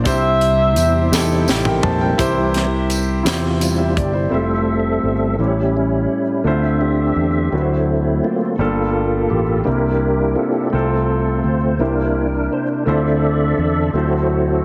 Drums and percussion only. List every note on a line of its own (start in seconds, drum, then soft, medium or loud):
0.05 kick loud
0.05 closed hi-hat medium
0.05 tambourine medium
0.41 closed hi-hat medium
0.76 closed hi-hat soft
0.76 tambourine medium
1.13 snare medium
1.13 tambourine medium
1.48 snare medium
1.48 tambourine medium
1.65 mid tom medium
1.83 floor tom loud
2.19 kick medium
2.19 closed hi-hat medium
2.19 tambourine soft
2.54 snare soft
2.54 closed hi-hat soft
2.90 closed hi-hat soft
2.90 tambourine soft
3.26 snare medium
3.26 closed hi-hat medium
3.26 tambourine medium
3.61 closed hi-hat medium
3.61 tambourine medium
3.97 kick medium
3.97 closed hi-hat soft